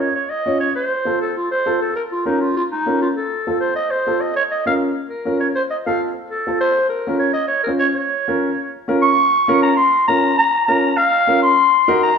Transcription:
0.00 0.15 C#5 medium
0.15 0.32 C#5 medium
0.30 0.60 D#5 medium
0.46 0.66 C#4 medium
0.46 0.66 F4 medium
0.46 0.67 C#5 medium
0.60 0.74 C#5 medium
0.76 1.17 C5 medium
1.05 1.26 C4 medium
1.05 1.27 F4 medium
1.05 1.27 A4 medium
1.21 1.35 A4 medium
1.37 1.50 F4 medium
1.51 1.79 C5 medium
1.66 1.87 C4 medium
1.66 1.87 F4 medium
1.66 1.87 A4 medium
1.81 1.95 A4 medium
1.96 2.03 A#4 medium
2.12 2.25 F4 medium
2.26 2.47 C#4 medium
2.26 2.43 D#4 medium
2.26 2.47 F4 medium
2.26 2.47 A#4 medium
2.41 2.56 F4 medium
2.57 2.63 F4 medium
2.72 2.99 D#4 medium
2.86 3.07 C#4 medium
2.86 3.07 F4 medium
2.86 3.07 A#4 medium
3.02 3.08 F4 medium
3.17 3.58 A4 medium
3.47 3.67 C4 medium
3.47 3.68 F4 medium
3.47 3.68 A4 medium
3.60 3.75 C5 medium
3.76 3.93 D#5 loud
3.91 4.22 C5 medium
4.07 4.27 C4 medium
4.07 4.28 F4 medium
4.07 4.28 A4 medium
4.21 4.35 D#5 medium
4.36 4.43 C#5 loud
4.51 4.65 D#5 medium
4.66 4.87 C#4 medium
4.66 4.87 F4 medium
4.66 4.88 A#4 medium
4.66 4.73 F5 medium
5.10 5.38 A#4 medium
5.25 5.47 C#4 medium
5.25 5.47 F4 medium
5.25 5.48 A#4 medium
5.40 5.47 C#5 medium
5.55 5.62 C5 medium
5.70 5.77 D#5 medium
5.86 6.08 C4 medium
5.86 6.08 F4 medium
5.86 6.08 A4 medium
5.86 6.01 F5 medium
6.31 6.59 A4 medium
6.47 6.68 C4 medium
6.47 6.68 F4 medium
6.47 6.68 A4 medium
6.61 6.89 C5 loud
6.89 7.19 A#4 medium
7.07 7.28 C#4 medium
7.07 7.28 F4 medium
7.07 7.29 A#4 medium
7.19 7.33 C#5 medium
7.34 7.47 D#5 loud
7.47 7.63 C#5 medium
7.64 7.88 C#4 medium
7.64 7.88 F4 medium
7.64 7.71 A#4 medium
7.68 7.88 C5 medium
7.79 7.87 C#5 medium
7.94 8.82 C#5 medium
8.28 8.49 C#4 medium
8.28 8.49 F4 medium
8.28 8.49 A#4 medium
8.88 9.09 C#4 medium
8.88 9.09 F4 medium
8.88 9.09 A#4 medium
9.02 9.59 C#6 loud
9.48 9.69 C#4 medium
9.48 9.69 F4 medium
9.48 9.69 A#4 loud
9.62 9.76 A#5 loud
9.77 10.05 C6 loud
10.08 10.29 C#4 medium
10.08 10.30 F4 medium
10.08 10.30 A#4 medium
10.08 10.36 A#5 loud
10.38 10.66 A#5 loud
10.67 10.89 C#4 medium
10.67 10.89 F4 medium
10.67 10.90 A#4 medium
10.67 10.98 A#5 loud
10.97 11.42 F5 loud
11.27 11.49 C#4 medium
11.27 11.49 F4 medium
11.27 11.49 A#4 medium
11.43 11.99 C6 loud
11.88 12.09 D#4 medium
11.88 12.09 F#4 medium
11.88 12.09 A#4 loud
12.03 12.17 A#5 loud

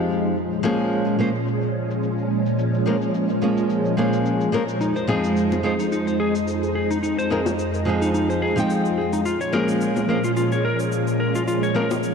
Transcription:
0.00 0.33 F2 medium
0.00 0.34 F3 medium
0.00 9.22 F3 medium
0.00 0.35 G#3 medium
0.00 9.22 G#3 medium
0.00 0.35 C4 medium
0.00 0.33 D#4 medium
0.00 0.35 D#4 medium
0.00 0.36 G4 medium
0.24 cabasa medium
0.36 4.77 A#2 medium
0.36 4.77 C#4 medium
0.36 cabasa medium
0.52 cabasa soft
0.63 1.16 F3 medium
0.63 1.16 G#3 medium
0.63 1.17 A#3 medium
0.63 1.17 C#4 medium
0.63 1.17 G#4 medium
0.80 cabasa medium
0.92 cabasa medium
1.08 cabasa soft
1.19 1.28 F3 medium
1.19 1.28 G#3 medium
1.19 1.29 A#3 medium
1.19 1.29 C#4 medium
1.19 1.29 C5 medium
1.35 cabasa medium
1.48 cabasa medium
1.63 cabasa soft
1.91 cabasa medium
2.03 cabasa soft
2.18 cabasa soft
2.46 cabasa medium
2.59 cabasa medium
2.74 cabasa soft
2.86 2.95 F3 medium
2.86 2.95 G#3 medium
2.86 2.95 A#3 medium
2.86 2.95 C#4 medium
2.86 2.96 A#4 medium
3.02 cabasa medium
3.14 cabasa soft
3.30 cabasa soft
3.42 3.95 F3 medium
3.42 3.95 G#3 medium
3.42 3.95 A#3 medium
3.42 3.96 C#4 medium
3.42 3.96 G#4 medium
3.58 cabasa medium
3.70 cabasa medium
3.85 cabasa soft
3.97 4.50 F3 medium
3.97 4.50 G#3 medium
3.97 4.50 A#3 medium
3.97 4.51 C#4 medium
3.97 4.51 G#4 medium
4.13 cabasa medium
4.26 cabasa medium
4.41 cabasa soft
4.52 4.61 F3 medium
4.52 4.62 G#3 medium
4.52 4.62 A#3 medium
4.52 4.62 C#4 medium
4.52 4.62 A#4 medium
4.69 cabasa medium
4.81 9.21 F2 medium
4.81 4.95 D#4 medium
4.81 9.21 D#4 medium
4.81 cabasa soft
4.96 5.07 C5 medium
4.96 cabasa soft
5.07 5.61 F3 medium
5.07 5.61 G#3 medium
5.07 5.61 C4 medium
5.07 5.61 D#4 medium
5.07 5.23 G#4 medium
5.07 5.62 G#4 medium
5.07 high bongo medium
5.24 cabasa medium
5.37 cabasa soft
5.52 high bongo medium
5.52 cabasa soft
5.63 5.73 F3 medium
5.63 5.73 G#3 medium
5.63 5.73 C4 medium
5.63 5.73 D#4 medium
5.63 5.78 G#4 medium
5.63 5.73 C5 medium
5.80 5.86 D#4 medium
5.80 cabasa medium
5.92 6.06 D#4 medium
5.92 cabasa soft
6.07 6.19 C5 medium
6.07 cabasa soft
6.20 6.34 G#4 medium
6.35 cabasa medium
6.48 cabasa soft
6.63 cabasa soft
6.75 6.89 G#4 medium
6.91 6.97 D#4 medium
6.91 cabasa medium
7.03 7.17 D#4 medium
7.03 cabasa soft
7.18 7.30 C5 medium
7.18 cabasa soft
7.30 7.39 F3 medium
7.30 7.40 G#3 medium
7.30 7.40 C4 medium
7.30 7.40 D#4 medium
7.30 7.45 G#4 medium
7.30 7.40 A#4 medium
7.46 high bongo medium
7.46 cabasa medium
7.59 cabasa soft
7.74 cabasa soft
7.85 8.53 F3 medium
7.85 8.53 G#3 medium
7.85 8.54 C4 medium
7.85 8.54 D#4 medium
7.85 8.00 G#4 medium
7.85 8.55 G#4 medium
8.02 8.09 D#4 medium
8.02 cabasa medium
8.14 8.28 D#4 medium
8.14 cabasa soft
8.30 8.41 C5 medium
8.30 cabasa soft
8.42 8.56 G#4 medium
8.56 9.23 F3 medium
8.56 9.24 G#3 medium
8.56 9.24 C4 medium
8.56 9.25 D#4 medium
8.56 9.25 G5 medium
8.56 cabasa medium
8.70 cabasa soft
8.86 cabasa soft
8.98 9.12 G#4 medium
9.13 9.20 D#4 medium
9.13 cabasa medium
9.26 12.14 A#2 medium
9.26 12.14 F3 medium
9.26 12.14 G#3 medium
9.26 12.14 C#4 medium
9.26 9.39 F4 medium
9.26 cabasa medium
9.41 9.52 C#5 medium
9.41 cabasa soft
9.53 10.05 F3 medium
9.53 10.06 G#3 medium
9.53 10.06 A#3 medium
9.53 10.06 C#4 medium
9.53 10.06 G#4 medium
9.53 9.67 A#4 medium
9.53 high bongo medium
9.69 cabasa medium
9.81 cabasa soft
9.96 high bongo medium
9.96 cabasa soft
10.09 10.17 F3 medium
10.09 10.18 G#3 medium
10.09 10.18 A#3 medium
10.09 10.18 C#4 medium
10.09 10.23 A#4 medium
10.09 10.18 C5 medium
10.24 10.31 F4 medium
10.24 cabasa medium
10.37 10.50 F4 medium
10.37 cabasa soft
10.52 10.63 C#5 medium
10.52 cabasa soft
10.65 10.78 A#4 medium
10.80 cabasa medium
10.92 cabasa soft
11.08 cabasa soft
11.20 11.34 A#4 medium
11.35 11.42 F4 medium
11.35 cabasa medium
11.48 11.61 F4 medium
11.48 cabasa medium
11.63 11.74 C#5 medium
11.63 cabasa soft
11.75 11.84 F3 medium
11.75 11.84 G#3 medium
11.75 11.84 A#3 medium
11.75 11.85 C#4 medium
11.75 11.89 A#4 medium
11.75 11.85 A#4 medium
11.75 high bongo medium
11.91 high bongo medium
11.91 cabasa medium
12.03 cabasa soft

